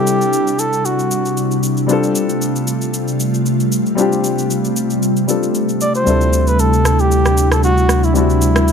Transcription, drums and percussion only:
0.07 shaker
0.21 shaker
0.33 shaker
0.47 shaker
0.59 shaker
0.73 shaker
0.85 shaker
0.99 shaker
1.11 shaker
1.25 shaker
1.37 shaker
1.51 shaker
1.63 shaker
1.77 shaker
1.89 shaker
2.03 shaker
2.15 shaker
2.29 shaker
2.42 shaker
2.56 shaker
2.67 shaker
2.81 shaker
2.94 shaker
3.08 shaker
3.20 shaker
3.34 shaker
3.46 shaker
3.60 shaker
3.72 shaker
3.86 shaker
3.98 shaker
4.12 shaker
4.24 shaker
4.38 shaker
4.50 shaker
4.65 shaker
4.76 shaker
4.90 shaker
5.03 shaker
5.17 shaker
5.28 shaker
5.43 shaker
5.55 shaker
5.69 shaker
5.81 shaker
5.95 shaker
6.07 shaker
6.21 shaker
6.33 shaker
6.47 shaker
6.59 shaker
6.73 shaker
6.85 cross-stick, shaker
6.99 shaker
7.11 shaker
7.25 cross-stick, shaker
7.37 shaker
7.52 cross-stick, shaker
7.63 shaker
7.78 shaker
7.89 cross-stick, shaker
8.03 shaker
8.15 shaker
8.30 shaker
8.41 shaker
8.56 cross-stick, shaker
8.68 shaker

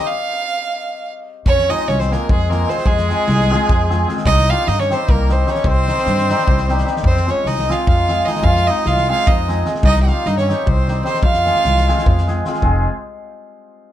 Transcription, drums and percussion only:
1.46 kick
1.59 snare
1.70 snare
1.88 snare
2.00 snare
2.12 snare
2.29 kick
2.51 snare
2.69 snare
2.78 snare
2.86 kick
2.98 snare
3.10 snare
3.28 snare
3.40 snare
3.52 snare
3.69 kick
3.91 snare
4.09 snare
4.17 snare
4.26 kick
4.38 snare
4.49 snare
4.67 snare
4.80 snare
4.91 snare
5.09 kick
5.29 snare
5.47 snare
5.55 snare
5.64 kick
5.88 snare
5.97 snare
6.06 snare
6.18 snare
6.29 snare
6.38 snare
6.48 kick
6.58 snare
6.69 snare
6.78 snare
6.87 snare
6.96 snare
7.04 kick
7.17 snare
7.27 snare
7.46 snare
7.58 snare
7.70 snare
7.87 kick
8.09 snare
8.27 snare
8.36 snare
8.44 kick
8.56 snare
8.85 snare
8.97 snare
9.27 kick
9.48 snare
9.66 snare
9.75 snare
9.83 kick
9.96 snare
10.08 snare
10.26 snare
10.38 snare
10.50 snare
10.67 kick
10.88 snare
11.05 snare
11.14 snare
11.23 kick
11.34 snare
11.46 snare
11.56 snare
11.65 snare
11.77 snare
11.89 snare
11.98 snare
12.06 kick
12.18 snare
12.28 snare
12.45 snare
12.54 snare
12.62 kick

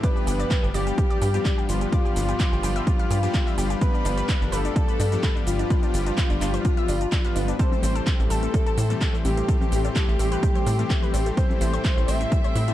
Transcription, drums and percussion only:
0.03 kick, closed hi-hat, shaker
0.17 shaker
0.27 open hi-hat, shaker
0.40 closed hi-hat, shaker
0.51 kick, clap, closed hi-hat, shaker
0.64 shaker
0.74 open hi-hat, shaker
0.87 closed hi-hat, shaker
0.98 kick, closed hi-hat, shaker
1.11 closed hi-hat, shaker
1.22 open hi-hat, shaker
1.34 closed hi-hat, shaker
1.45 kick, clap, closed hi-hat, shaker
1.58 shaker
1.69 open hi-hat, shaker
1.81 closed hi-hat, shaker
1.92 kick, closed hi-hat, shaker
2.06 shaker
2.16 open hi-hat, shaker
2.29 closed hi-hat, shaker
2.40 kick, clap, closed hi-hat, shaker
2.53 shaker
2.63 open hi-hat, shaker
2.76 closed hi-hat, shaker
2.87 kick, closed hi-hat, shaker
2.99 closed hi-hat, shaker
3.11 open hi-hat, shaker
3.23 closed hi-hat, shaker
3.34 kick, clap, closed hi-hat, shaker
3.47 shaker
3.58 open hi-hat, shaker
3.70 closed hi-hat, shaker
3.81 kick, closed hi-hat, shaker
3.95 shaker
4.05 open hi-hat, shaker
4.18 closed hi-hat, shaker
4.29 kick, clap, closed hi-hat, shaker
4.42 shaker
4.52 open hi-hat, shaker
4.65 closed hi-hat, shaker
4.76 kick, closed hi-hat, shaker
4.89 closed hi-hat, shaker
5.00 open hi-hat, shaker
5.12 closed hi-hat, shaker
5.23 kick, clap, closed hi-hat, shaker
5.36 shaker
5.47 open hi-hat, shaker
5.59 closed hi-hat, shaker
5.70 kick, closed hi-hat, shaker
5.83 closed hi-hat, shaker
5.94 open hi-hat, shaker
6.06 closed hi-hat, shaker
6.18 kick, clap, closed hi-hat, shaker
6.30 closed hi-hat, shaker
6.41 clap, open hi-hat, shaker
6.54 closed hi-hat, shaker
6.65 kick, closed hi-hat, shaker
6.77 closed hi-hat, shaker
6.88 open hi-hat, shaker
7.01 closed hi-hat, shaker
7.12 kick, clap, closed hi-hat, shaker
7.25 closed hi-hat, shaker
7.36 open hi-hat, shaker
7.48 closed hi-hat, shaker
7.59 kick, closed hi-hat, shaker
7.72 high conga, low conga, shaker
7.83 open hi-hat, high bongo, shaker
7.96 closed hi-hat, shaker
8.07 kick, clap, closed hi-hat, shaker
8.20 shaker
8.30 open hi-hat, shaker
8.43 closed hi-hat, high conga, shaker
8.54 kick, closed hi-hat, high bongo, shaker
8.67 closed hi-hat, shaker
8.78 open hi-hat, shaker
8.90 closed hi-hat, shaker
9.01 kick, clap, closed hi-hat, shaker
9.14 high bongo, shaker
9.25 open hi-hat, high conga, shaker
9.37 closed hi-hat, shaker
9.48 kick, closed hi-hat, shaker
9.61 high conga, low conga, shaker
9.72 open hi-hat, shaker
9.85 closed hi-hat, high bongo, shaker
9.96 kick, clap, closed hi-hat, shaker
10.09 shaker
10.19 open hi-hat, shaker
10.32 closed hi-hat, shaker
10.43 kick, closed hi-hat, high bongo, shaker
10.55 closed hi-hat, low conga, shaker
10.66 open hi-hat, shaker
10.79 closed hi-hat, shaker
10.90 kick, clap, closed hi-hat, shaker
11.03 low conga, shaker
11.14 open hi-hat, high bongo, shaker
11.26 closed hi-hat, shaker
11.37 kick, closed hi-hat, shaker
11.50 high conga, low conga, shaker
11.61 open hi-hat, shaker
11.74 closed hi-hat, high bongo, shaker
11.85 kick, clap, closed hi-hat, shaker
11.98 shaker
12.08 open hi-hat, shaker
12.21 closed hi-hat, high conga, shaker
12.32 kick, closed hi-hat, shaker
12.44 closed hi-hat, high bongo, shaker
12.56 open hi-hat, shaker
12.68 closed hi-hat, shaker

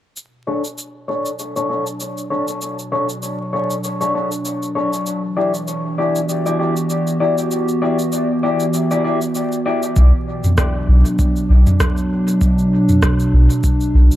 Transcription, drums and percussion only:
0.17 cabasa
0.65 cabasa
0.78 cabasa
1.26 cabasa
1.39 cabasa
1.56 cabasa
1.87 cabasa
2.00 cabasa
2.18 cabasa
2.48 cabasa
2.62 cabasa
2.79 cabasa
3.09 cabasa
3.23 cabasa
3.71 cabasa
3.84 cabasa
4.01 cabasa
4.32 cabasa
4.45 cabasa
4.63 cabasa
4.93 cabasa
5.07 cabasa
5.54 cabasa
5.68 cabasa
6.16 cabasa
6.29 cabasa
6.46 cabasa
6.77 cabasa
6.90 cabasa
7.07 cabasa
7.38 cabasa
7.51 cabasa
7.69 cabasa
7.99 cabasa
8.12 cabasa
8.60 cabasa
8.74 cabasa
8.91 cabasa
9.22 cabasa
9.35 cabasa
9.52 cabasa
9.83 cabasa
9.96 kick, cabasa
10.44 mid tom, cabasa
10.58 kick, cross-stick, cabasa
11.06 cabasa
11.19 kick, cabasa
11.36 cabasa
11.67 mid tom, cabasa
11.80 kick, cross-stick, cabasa
11.97 cabasa
12.28 cabasa
12.41 kick, cabasa
12.59 cabasa
12.89 mid tom, cabasa
13.02 kick, cross-stick, cabasa
13.20 cabasa
13.50 cabasa
13.64 kick, cabasa
13.81 cabasa
14.12 cabasa

